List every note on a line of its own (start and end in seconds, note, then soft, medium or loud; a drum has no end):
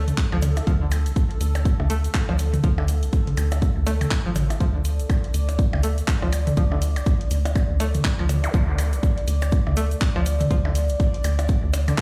0.00 0.11 D2 medium
0.00 4.62 A4 medium
0.08 closed hi-hat soft
0.08 mid tom medium
0.08 shaker soft
0.18 kick loud
0.18 clap loud
0.18 closed hi-hat soft
0.18 shaker soft
0.32 0.61 D2 medium
0.32 0.35 F3 loud
0.32 percussion blips medium
0.42 open hi-hat medium
0.42 mid tom medium
0.42 percussion blips medium
0.42 shaker loud
0.56 closed hi-hat medium
0.56 percussion blips medium
0.56 shaker soft
0.67 1.08 D2 loud
0.67 0.69 F3 loud
0.67 kick loud
0.67 closed hi-hat soft
0.67 shaker soft
0.81 0.84 D3 medium
0.91 open hi-hat medium
0.91 percussion blips medium
0.91 shaker loud
1.06 1.12 C2 medium
1.06 closed hi-hat medium
1.06 shaker medium
1.16 kick loud
1.16 closed hi-hat soft
1.16 shaker soft
1.31 open hi-hat soft
1.41 1.71 D2 medium
1.41 open hi-hat medium
1.41 shaker medium
1.55 closed hi-hat medium
1.55 percussion blips medium
1.55 shaker medium
1.65 kick loud
1.65 closed hi-hat soft
1.65 shaker soft
1.80 2.08 D2 loud
1.80 mid tom medium
1.80 percussion blips medium
1.90 1.94 A3 loud
1.90 open hi-hat medium
1.90 shaker medium
2.04 closed hi-hat medium
2.04 shaker medium
2.14 kick medium
2.14 clap loud
2.14 closed hi-hat soft
2.14 percussion blips medium
2.14 shaker soft
2.29 2.57 D2 loud
2.29 2.32 F3 loud
2.29 percussion blips medium
2.39 open hi-hat medium
2.39 shaker medium
2.54 closed hi-hat medium
2.54 mid tom loud
2.54 shaker medium
2.63 3.04 D2 loud
2.63 2.66 F3 loud
2.63 kick loud
2.63 closed hi-hat soft
2.63 shaker soft
2.78 2.81 D3 medium
2.78 percussion blips medium
2.88 open hi-hat medium
2.88 shaker medium
3.03 3.09 C2 medium
3.03 closed hi-hat medium
3.03 shaker medium
3.13 kick loud
3.13 closed hi-hat soft
3.13 shaker soft
3.27 open hi-hat soft
3.27 mid tom medium
3.37 3.67 D2 loud
3.37 open hi-hat medium
3.37 percussion blips medium
3.37 shaker medium
3.51 closed hi-hat medium
3.51 percussion blips medium
3.51 percussion blips soft
3.51 shaker medium
3.62 kick loud
3.62 closed hi-hat soft
3.62 shaker soft
3.77 4.05 D2 medium
3.86 3.91 A3 loud
3.86 open hi-hat medium
3.86 percussion blips medium
3.86 shaker medium
4.01 closed hi-hat medium
4.01 mid tom medium
4.01 percussion blips medium
4.01 shaker medium
4.11 kick loud
4.11 clap loud
4.11 closed hi-hat soft
4.11 shaker soft
4.26 4.54 A1 medium
4.26 4.29 F3 loud
4.36 open hi-hat medium
4.36 mid tom medium
4.36 percussion blips medium
4.36 shaker loud
4.50 closed hi-hat medium
4.50 percussion blips medium
4.50 shaker soft
4.60 5.01 D2 loud
4.60 4.63 F3 loud
4.60 12.01 D5 medium
4.60 kick loud
4.60 closed hi-hat soft
4.60 shaker soft
4.75 4.78 D3 medium
4.85 open hi-hat medium
4.85 shaker medium
4.99 5.06 C2 medium
4.99 closed hi-hat medium
4.99 shaker medium
5.10 kick loud
5.10 closed hi-hat soft
5.10 percussion blips medium
5.10 shaker soft
5.24 open hi-hat soft
5.34 5.64 D2 medium
5.34 open hi-hat medium
5.34 shaker medium
5.49 closed hi-hat medium
5.49 percussion blips medium
5.49 shaker medium
5.59 kick loud
5.59 closed hi-hat soft
5.59 shaker soft
5.73 6.02 D2 loud
5.73 mid tom medium
5.73 percussion blips medium
5.83 5.87 A3 loud
5.83 open hi-hat medium
5.83 shaker medium
5.98 closed hi-hat medium
5.98 shaker medium
6.08 kick loud
6.08 clap loud
6.08 closed hi-hat soft
6.08 shaker soft
6.22 6.51 D2 medium
6.22 6.25 F3 loud
6.22 percussion blips medium
6.33 open hi-hat loud
6.33 percussion blips medium
6.33 shaker loud
6.47 closed hi-hat medium
6.47 mid tom loud
6.47 shaker medium
6.57 6.98 D2 loud
6.57 6.60 F3 loud
6.57 kick loud
6.57 closed hi-hat soft
6.57 shaker soft
6.72 6.74 D3 medium
6.72 percussion blips medium
6.82 open hi-hat medium
6.82 shaker loud
6.96 7.02 C2 medium
6.96 closed hi-hat medium
6.96 percussion blips medium
6.96 shaker soft
7.06 kick loud
7.06 closed hi-hat soft
7.06 shaker soft
7.21 open hi-hat soft
7.31 7.61 D2 medium
7.31 open hi-hat loud
7.31 shaker loud
7.45 closed hi-hat medium
7.45 percussion blips medium
7.45 shaker medium
7.55 kick loud
7.55 closed hi-hat soft
7.55 percussion blips medium
7.55 shaker soft
7.70 7.98 D2 medium
7.80 7.84 A3 loud
7.80 open hi-hat loud
7.80 percussion blips medium
7.80 shaker loud
7.94 closed hi-hat medium
7.94 mid tom medium
7.94 shaker medium
8.04 kick loud
8.04 clap loud
8.04 closed hi-hat soft
8.04 shaker soft
8.19 8.47 D2 loud
8.19 8.22 F3 loud
8.19 percussion blips medium
8.29 open hi-hat loud
8.29 mid tom medium
8.29 percussion blips medium
8.29 shaker loud
8.44 closed hi-hat medium
8.44 zap medium
8.44 percussion blips medium
8.44 shaker medium
8.54 8.94 D2 loud
8.54 8.56 F3 loud
8.54 kick loud
8.54 closed hi-hat soft
8.54 shaker soft
8.68 8.71 D3 medium
8.78 open hi-hat loud
8.78 percussion blips medium
8.78 shaker loud
8.93 8.99 C2 medium
8.93 closed hi-hat medium
8.93 shaker medium
9.03 kick loud
9.03 closed hi-hat soft
9.03 shaker soft
9.18 open hi-hat soft
9.28 9.57 D2 medium
9.28 open hi-hat medium
9.28 shaker loud
9.42 closed hi-hat soft
9.42 percussion blips medium
9.42 shaker medium
9.52 kick loud
9.52 closed hi-hat soft
9.52 shaker soft
9.67 9.95 D2 medium
9.67 mid tom medium
9.67 percussion blips medium
9.77 9.81 A3 loud
9.77 open hi-hat loud
9.77 shaker loud
9.91 closed hi-hat medium
9.91 shaker medium
10.01 kick loud
10.01 clap loud
10.01 closed hi-hat soft
10.01 percussion blips medium
10.01 shaker soft
10.16 10.44 D2 loud
10.16 10.19 F3 loud
10.16 percussion blips medium
10.26 open hi-hat loud
10.26 shaker loud
10.40 closed hi-hat medium
10.40 mid tom loud
10.40 shaker medium
10.51 10.91 D2 loud
10.51 10.53 F3 loud
10.51 kick loud
10.51 closed hi-hat soft
10.51 shaker soft
10.65 10.68 D3 medium
10.65 percussion blips medium
10.75 open hi-hat medium
10.75 shaker medium
10.89 10.96 C2 medium
10.89 closed hi-hat soft
10.89 shaker medium
11.00 kick loud
11.00 closed hi-hat soft
11.00 shaker soft
11.14 open hi-hat soft
11.24 11.54 D2 medium
11.24 open hi-hat loud
11.24 percussion blips medium
11.24 shaker loud
11.39 closed hi-hat medium
11.39 percussion blips medium
11.39 shaker medium
11.48 kick loud
11.48 closed hi-hat soft
11.48 shaker soft
11.63 11.92 D2 loud
11.74 open hi-hat loud
11.74 percussion blips medium
11.74 shaker loud
11.88 11.91 D3 medium
11.88 closed hi-hat medium
11.88 mid tom medium
11.88 percussion blips medium
11.88 shaker medium